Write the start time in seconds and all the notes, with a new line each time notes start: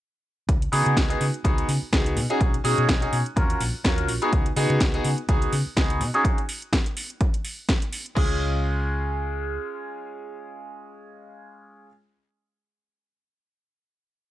0.49 C#2, kick, closed hi-hat
0.62 closed hi-hat
0.72 C#3 B3 D#4 F#4 G#4, open hi-hat
0.86 C#3, closed hi-hat
0.97 C#2, kick, snare, closed hi-hat
1.09 B3 D#4 F#4 G#4, closed hi-hat
1.21 C#3, open hi-hat
1.34 closed hi-hat
1.44 C#2 B3 D#4 F#4 G#4, kick, closed hi-hat
1.58 closed hi-hat
1.68 C#3, open hi-hat
1.82 muted fingered electric bass stroke
1.93 C#2 B3 D#4 F#4 G#4, kick, snare, closed hi-hat
2.06 closed hi-hat
2.17 B2, open hi-hat
2.30 C#4 D#4 F#4 G#4, closed hi-hat
2.41 B1, kick, closed hi-hat
2.54 closed hi-hat
2.64 B2 C#4 D#4 F#4 G#4, open hi-hat
2.78 B2, closed hi-hat
2.89 B1, kick, snare, closed hi-hat
3.01 C#4 D#4 F#4 G#4, closed hi-hat
3.13 B2, open hi-hat
3.26 closed hi-hat
3.36 D#2 C#4 F4 F#4 A#4, kick, closed hi-hat
3.50 closed hi-hat
3.60 A#1, open hi-hat
3.74 muted fingered electric bass stroke
3.84 D#2 C#4 F4 F#4 A#4, kick, snare, closed hi-hat
3.98 closed hi-hat
4.08 A#1, open hi-hat
4.22 B3 D#4 F#4 G#4, closed hi-hat
4.33 C#2, kick, closed hi-hat
4.46 closed hi-hat
4.56 C#3 B3 D#4 F#4 G#4, open hi-hat
4.70 C#3, closed hi-hat
4.81 C#2, kick, snare, closed hi-hat
4.94 B3 D#4 F#4 G#4, closed hi-hat
5.05 C#3, open hi-hat
5.18 closed hi-hat
5.29 C#2 B3 D#4 F#4 G#4, kick, closed hi-hat
5.42 closed hi-hat
5.53 C#3, open hi-hat
5.66 muted fingered electric bass stroke
5.76 C#2 B3 D#4 F#4 G#4, kick, snare, closed hi-hat
5.90 closed hi-hat
6.00 B2, open hi-hat
6.14 C#4 D#4 F#4 G#4, closed hi-hat
6.25 kick, closed hi-hat
6.38 closed hi-hat
6.49 open hi-hat
6.62 closed hi-hat
6.73 kick, snare, closed hi-hat
6.86 closed hi-hat
6.97 open hi-hat
7.10 closed hi-hat
7.21 kick, closed hi-hat
7.34 closed hi-hat
7.45 open hi-hat
7.69 kick, snare, closed hi-hat
7.82 closed hi-hat
7.93 open hi-hat
8.06 closed hi-hat
8.15 C#2 G#3 C#4 F4 G#4, kick, crash